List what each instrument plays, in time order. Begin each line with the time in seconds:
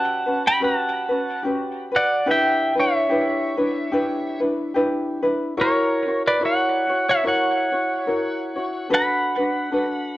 Already playing: ukulele C#4 F#4 G4 B4, pedal steel guitar F#5 A5
0.26 ukulele C#4 F#4 B4
0.48 pedal steel guitar G5 B5
0.60 ukulele C#4 F#4 G4 B4, pedal steel guitar F#5
0.65 pedal steel guitar A5
1.09 ukulele C#4 F#4 B4
1.43 ukulele C#4 F#4 G4 B4
1.92 ukulele F#4 B4
1.96 pedal steel guitar D5 F#5
2.26 ukulele D4 E4 G4 B4
2.31 pedal steel guitar E5 G5
2.75 ukulele D4 E4 B4
2.79 pedal steel guitar C#5 E5
3.09 ukulele D4 E4 G4 B4
3.57 ukulele D4 E4 B4
3.92 ukulele D4 E4 G4 B4
4.40 ukulele D4 E4 B4
4.74 ukulele D4 E4 G4 B4
5.23 ukulele D4 E4 B4
5.57 ukulele E4 F#4 A#4 C#5, pedal steel guitar A#4
5.61 pedal steel guitar C#5
6.07 ukulele E4 F#4 C#5
6.28 pedal steel guitar B4 D5
6.41 ukulele E4 F#4 A#4 C#5
6.45 pedal steel guitar C#5 F#5
6.89 ukulele E4 F#4 C#5
7.09 pedal steel guitar C#5 E5
7.24 ukulele E4 F#4 A#4 C#5, pedal steel guitar C#5
7.28 pedal steel guitar F#5
7.72 ukulele E4 F#4 C#5
8.07 ukulele E4 F#4 A#4 C#5
8.56 ukulele E4 F#4 C#5
8.89 ukulele D4 F#4 A4 B4
8.94 pedal steel guitar F#5 B5
9.37 ukulele D4 F#4 B4
9.71 ukulele D4 F#4 A4 B4